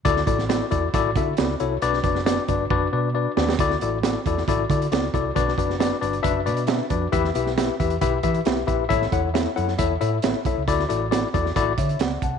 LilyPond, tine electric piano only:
\new Staff \with { instrumentName = "Tine electric piano" } { \time 4/4 \key d \major \tempo 4 = 136 <e' fis' a' d''>8 <e' fis' a' d''>8 <e' fis' a' d''>8 <e' fis' a' d''>8 <e' fis' a' d''>8 <e' fis' a' e''>8 <e' fis' a' d''>8 <e' fis' a' cis''>8 | <d' fis' b' d''>8 <d' fis' b' d''>8 <d' fis' b' d''>8 <d' fis' b' d''>8 <d' fis' b' d''>8 <d' fis' b' d''>8 <d' fis' b' d''>8 <d' fis' b' d''>8 | <e' fis' a' d''>8 <e' fis' a' d''>8 <e' fis' a' d''>8 <e' fis' a' d''>8 <e' fis' a' d''>8 <e' fis' a' d''>8 <e' fis' a' d''>8 <e' fis' a' d''>8 | <d' fis' b' d''>8 <d' fis' b' d''>8 <d' fis' b' d''>8 <d' fis' b' d''>8 <d' fis' b' e''>8 <d' fis' b' d''>8 <d' fis' b' e''>8 <d' fis' b' d''>8 |
<e' g' b' e''>8 <e' g' b' e''>8 <e' g' b' e''>8 <e' g' b' e''>8 <e' g' b' e''>8 <e' g' b' e''>8 <e' g' b' e''>8 <e' g' b' e''>8 | <e' a' cis'' e''>8 <e' a' cis'' fis''>8 <e' a' cis'' e''>8 <e' a' cis'' fis''>8 <e' a' cis'' e''>8 <e' a' cis'' e''>8 <e' a' cis'' e''>8 <e' a' cis'' e''>8 | <e' fis' a' d''>8 <e' fis' a' d''>8 <e' fis' a' d''>8 <e' fis' a' d''>8 <e' fis' a' d''>8 <cis'' e''>8 <d'' fis''>8 <fis'' a''>8 | }